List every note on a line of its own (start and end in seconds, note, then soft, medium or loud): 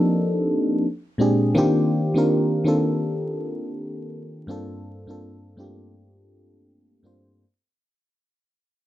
0.00 0.84 F3 medium
0.00 0.84 A#3 medium
0.00 0.84 C4 medium
0.00 0.84 D4 medium
0.00 0.84 D#4 medium
0.00 0.84 G4 medium
0.00 0.84 A4 medium
0.00 0.84 A#4 medium
1.18 1.53 A#2 medium
1.18 1.53 G#3 medium
1.18 1.54 C4 medium
1.18 1.54 D4 medium
1.18 1.55 G4 medium
1.18 1.55 G#4 medium
1.55 2.10 D#3 loud
1.55 2.10 A#3 medium
1.55 2.10 C4 medium
1.55 2.11 D4 medium
1.55 2.11 F4 medium
1.55 2.11 G4 loud
2.14 2.62 D#3 medium
2.14 2.62 A#3 medium
2.14 2.63 C4 medium
2.14 2.63 D4 medium
2.14 2.64 F4 medium
2.14 2.64 A#4 medium
2.64 4.03 D#3 medium
2.64 4.04 A#3 medium
2.64 4.04 C4 medium
2.64 4.04 D4 medium
2.64 4.05 F4 medium
2.64 4.05 A4 medium
4.47 5.02 G2 medium
4.47 5.03 A#3 medium
4.47 5.03 C4 medium
4.47 5.03 D4 medium
4.47 5.04 F4 medium
4.47 5.04 A4 loud
5.07 5.55 G2 medium
5.07 5.55 A#3 medium
5.07 5.55 C4 medium
5.07 5.56 D4 medium
5.07 5.56 F4 medium
5.07 5.56 A4 medium
5.57 6.96 G2 medium
5.57 5.66 A3 medium
5.57 6.96 C4 medium
5.57 6.97 D4 medium
5.57 6.97 F4 medium
5.57 6.98 G4 medium
5.63 6.99 A#3 medium
7.03 7.38 G2 medium
7.03 7.39 A#3 medium
7.03 7.39 C4 medium
7.03 7.39 D4 medium
7.03 7.40 F4 medium
7.03 7.40 C5 medium